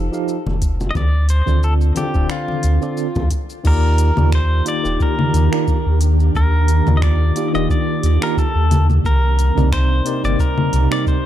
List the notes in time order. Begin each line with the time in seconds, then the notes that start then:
0.11 F3 D#4 G4 A4 F5, shaker
0.28 shaker
0.46 F1, high conga, low conga
0.62 kick, closed hi-hat, shaker
0.81 low conga, shaker
0.91 D#5
0.95 D2 D5, kick, high conga, shaker
1.29 C5, closed hi-hat, shaker
1.46 D2 D3 C4 F4 A4 D5, kick, high conga, shaker
1.63 A4, shaker
1.81 shaker
1.95 D3 C4 F4 G4 A4 D5, closed hi-hat, high conga, shaker
2.14 D1 D3 C4 F4 A4 D5, kick, shaker
2.30 F4, finger snap, shaker
2.48 high conga
2.63 D2, closed hi-hat, shaker
2.81 D3 C4 F4 A4 D5, shaker
2.97 shaker
3.16 D2, kick, high conga, low conga, shaker
3.31 kick, closed hi-hat, shaker
3.50 shaker
3.64 D#2 D#3 A#3 D4 F4 G4 A#4 D5, kick, crash, shaker
3.98 closed hi-hat, shaker
4.16 D#2 D#3 A#3 F4 G4 D5, low conga, shaker
4.32 C5, finger snap, kick, shaker
4.65 D#3 A#3 F4 G4 D5, closed hi-hat, shaker
4.83 D#1 D#3 A#3 F4 G4 D5, shaker
5.00 A#4, kick, shaker
5.19 low conga
5.34 D#2, closed hi-hat, shaker
5.51 D#3 A#3 F4 G4 D5, finger snap, shaker
5.68 kick, shaker
5.86 D#2
6.01 closed hi-hat, shaker
6.20 shaker
6.35 D#2 A#4, kick, shaker
6.68 closed hi-hat, shaker
6.86 D#2 D#3 A#3 F4 G4 D5, low conga, shaker
6.97 D#5
7.02 D5, finger snap, kick, shaker
7.35 D#3 A#3 F4 G4 D5, closed hi-hat, shaker
7.53 D#1 D#3 A#3 F4 G4 D5 D#5, shaker
7.70 D5, kick, shaker
8.03 D#2, closed hi-hat, shaker
8.21 D#3 A#3 F4 G4 A#4 D5, finger snap, shaker
8.37 A4, kick, shaker
8.55 D#2
8.71 closed hi-hat, low conga, shaker
8.90 low conga, shaker
9.04 C2 C3 G3 D#4 A#4, kick, shaker
9.39 closed hi-hat, shaker
9.55 C2 C3 C4 D#4 A#4 D5, low conga, shaker
9.72 C5, finger snap, kick, shaker
10.04 C3 C4 D#4 A#4 D5, closed hi-hat, shaker
10.23 G1 C3 C4 D#4 A#4 D5, shaker
10.39 A#4, kick, shaker
10.58 low conga
10.73 C2, closed hi-hat, shaker
10.90 C3 C4 D#4 A#4 D5, finger snap, shaker
11.07 C5, kick, shaker